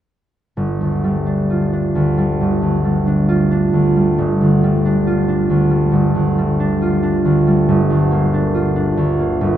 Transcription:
0.57 2.40 G1 soft
0.81 1.94 D2 soft
1.04 2.17 G3 soft
1.26 1.72 D4 soft
1.50 3.27 F4 soft
1.73 3.06 D4 soft
1.95 2.61 D2 soft
2.18 2.83 G3 soft
2.41 4.17 G1 soft
2.62 3.72 D2 soft
2.84 3.95 G3 soft
3.07 3.50 D4 soft
3.29 5.06 F4 soft
3.51 4.84 D4 soft
3.73 4.22 D2 soft
3.96 4.62 G3 soft
4.18 5.90 G1 soft
4.41 5.49 D2 soft
4.63 5.69 G3 soft
4.85 5.27 D4 soft
5.07 6.80 F4 soft
5.28 6.59 D4 soft
5.50 6.14 D2 soft
5.70 6.37 G3 soft
5.92 7.67 G1 soft
6.15 7.24 D2 soft
6.38 7.46 G3 soft
6.60 7.02 D4 soft
6.82 8.53 F4 soft
7.03 8.32 D4 soft
7.25 7.72 D2 soft
7.47 9.57 G3 soft
7.69 9.40 G1 soft
7.90 8.96 D2 soft
8.11 9.18 A#3 soft
8.34 8.74 D4 soft
8.54 9.57 F4 soft
8.76 9.57 D4 soft
8.97 9.57 D2 soft
9.19 9.57 A#3 soft
9.41 9.57 G1 soft

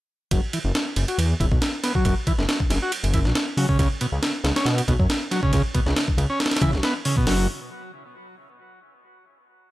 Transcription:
0.31 0.39 F#1 loud
0.31 0.41 F#3 medium
0.31 kick loud
0.31 ride medium
0.53 0.59 E3 medium
0.53 ride medium
0.64 0.72 F#1 medium
0.75 snare loud
0.75 ride medium
0.96 1.05 F#1 medium
0.96 ride medium
1.08 1.18 F#4 medium
1.08 ride soft
1.18 1.34 E2 medium
1.18 ride medium
1.40 1.48 E1 medium
1.40 1.46 E3 medium
1.40 kick medium
1.40 ride medium
1.52 1.59 B1 medium
1.52 kick medium
1.62 snare loud
1.62 ride medium
1.83 1.93 B3 medium
1.83 snare soft
1.83 ride medium
1.95 2.04 F#3 medium
1.95 kick medium
2.05 2.13 F#1 medium
2.05 2.15 F#3 medium
2.05 kick loud
2.05 ride medium
2.27 2.33 E3 medium
2.27 kick medium
2.27 ride medium
2.38 2.46 F#1 medium
2.38 snare soft
2.49 snare loud
2.49 ride medium
2.60 kick medium
2.70 2.78 F#1 medium
2.70 snare soft
2.70 ride medium
2.82 2.92 F#4 medium
2.92 ride medium
3.04 3.27 F#1 loud
3.04 ride soft
3.14 3.19 E3 medium
3.14 kick medium
3.14 ride medium
3.25 3.33 B1 loud
3.25 snare soft
3.35 snare loud
3.35 ride medium
3.57 3.65 C#3 medium
3.57 3.67 F#3 medium
3.57 open hi-hat medium
3.69 3.78 C#3 medium
3.69 kick medium
3.79 3.87 C#2 loud
3.79 3.88 C#3 medium
3.79 kick loud
3.79 ride medium
4.01 4.07 B2 medium
4.01 ride medium
4.12 4.19 C#2 medium
4.23 snare loud
4.23 ride medium
4.44 4.52 C#2 loud
4.44 snare loud
4.44 ride medium
4.56 4.66 C#4 medium
4.56 snare medium
4.56 ride medium
4.65 4.82 B2 medium
4.65 snare loud
4.65 ride medium
4.78 ride medium
4.88 4.96 B1 loud
4.88 4.93 B2 medium
4.88 kick medium
4.88 ride medium
4.99 5.07 F#2 medium
4.99 kick medium
5.10 snare loud
5.10 ride medium
5.31 5.41 F#3 medium
5.31 snare soft
5.31 ride medium
5.43 5.52 C#3 medium
5.43 kick medium
5.53 5.61 C#2 loud
5.53 5.62 C#3 loud
5.53 kick loud
5.53 ride medium
5.74 5.80 B2 medium
5.74 kick medium
5.74 ride medium
5.86 5.93 C#2 medium
5.86 snare medium
5.96 snare loud
5.96 ride medium
6.08 kick medium
6.18 6.26 C#2 loud
6.18 ride medium
6.30 6.39 C#4 medium
6.40 snare medium
6.40 ride medium
6.46 snare medium
6.46 ride medium
6.51 snare medium
6.51 ride medium
6.56 snare medium
6.56 ride medium
6.61 6.74 C#3 loud
6.61 6.71 E3 loud
6.61 kick loud
6.61 ride medium
6.73 6.80 B1 medium
6.73 snare soft
6.83 6.94 B3 medium
6.83 snare loud
6.83 ride medium
7.05 7.16 C#3 medium
7.05 open hi-hat medium
7.17 7.26 B2 medium
7.17 kick loud
7.27 7.47 F#1 loud
7.27 7.47 F#3 medium
7.27 snare loud
7.27 open hi-hat medium

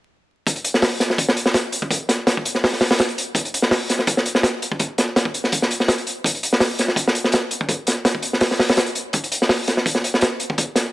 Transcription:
0.47 kick medium
0.47 closed hi-hat medium
0.56 closed hi-hat soft
0.64 closed hi-hat medium
0.74 snare soft
0.82 snare loud
0.82 open hi-hat medium
1.00 snare soft
1.00 closed hi-hat medium
1.10 snare soft
1.18 kick loud
1.18 closed hi-hat medium
1.29 snare medium
1.37 closed hi-hat medium
1.46 snare soft
1.54 snare loud
1.54 closed hi-hat medium
1.72 closed hi-hat medium
1.82 kick medium
1.91 kick loud
1.91 closed hi-hat medium
2.09 snare soft
2.09 closed hi-hat medium
2.27 snare loud
2.27 closed hi-hat medium
2.37 kick medium
2.45 closed hi-hat medium
2.55 snare soft
2.64 snare loud
2.64 open hi-hat medium
2.73 snare soft
2.81 snare medium
2.81 open hi-hat medium
2.91 snare medium
2.91 open hi-hat medium
2.99 snare loud
2.99 closed hi-hat medium
3.08 closed hi-hat soft
3.18 closed hi-hat medium
3.35 kick medium
3.35 closed hi-hat medium
3.45 closed hi-hat soft
3.54 closed hi-hat medium
3.62 snare soft
3.71 snare loud
3.71 open hi-hat medium
3.89 snare soft
3.89 closed hi-hat medium
3.99 snare soft
4.07 kick loud
4.07 closed hi-hat medium
4.17 snare soft
4.26 closed hi-hat medium
4.35 snare soft
4.43 snare loud
4.43 closed hi-hat medium
4.62 closed hi-hat medium
4.72 kick medium
4.79 kick loud
4.79 closed hi-hat medium
4.98 snare medium
4.98 closed hi-hat medium
5.16 snare loud
5.16 closed hi-hat medium
5.25 kick medium
5.34 closed hi-hat medium
5.44 snare soft
5.52 kick loud
5.52 closed hi-hat medium
5.62 snare soft
5.71 closed hi-hat medium
5.80 snare soft
5.88 snare loud
5.88 closed hi-hat medium
5.98 closed hi-hat soft
6.07 closed hi-hat medium
6.24 kick loud
6.24 closed hi-hat medium
6.35 closed hi-hat soft
6.43 closed hi-hat medium
6.53 snare soft
6.60 snare loud
6.60 open hi-hat medium
6.79 snare soft
6.79 closed hi-hat medium
6.88 snare soft
6.96 kick medium
6.96 closed hi-hat medium
7.08 snare medium
7.15 closed hi-hat medium
7.24 snare soft
7.32 snare loud
7.32 closed hi-hat medium
7.51 closed hi-hat medium
7.61 kick medium
7.69 kick loud
7.69 closed hi-hat medium
7.87 snare soft
7.87 closed hi-hat medium
8.05 snare loud
8.05 closed hi-hat medium
8.15 kick medium
8.22 closed hi-hat medium
8.33 snare soft
8.41 snare medium
8.41 open hi-hat medium
8.51 snare soft
8.59 snare medium
8.59 open hi-hat medium
8.69 snare loud
8.69 open hi-hat medium
8.77 snare loud
8.77 closed hi-hat medium
8.86 closed hi-hat soft
8.95 closed hi-hat medium
9.13 kick loud
9.13 closed hi-hat medium
9.24 closed hi-hat soft
9.32 closed hi-hat medium
9.42 snare soft
9.49 snare loud
9.49 open hi-hat medium
9.67 snare soft
9.67 closed hi-hat medium
9.77 snare soft
9.86 kick loud
9.86 closed hi-hat medium
9.95 snare soft
10.04 closed hi-hat medium
10.14 snare soft
10.21 snare loud
10.21 closed hi-hat medium
10.40 closed hi-hat medium
10.50 kick medium
10.58 kick loud
10.58 closed hi-hat medium
10.76 snare soft
10.76 closed hi-hat medium

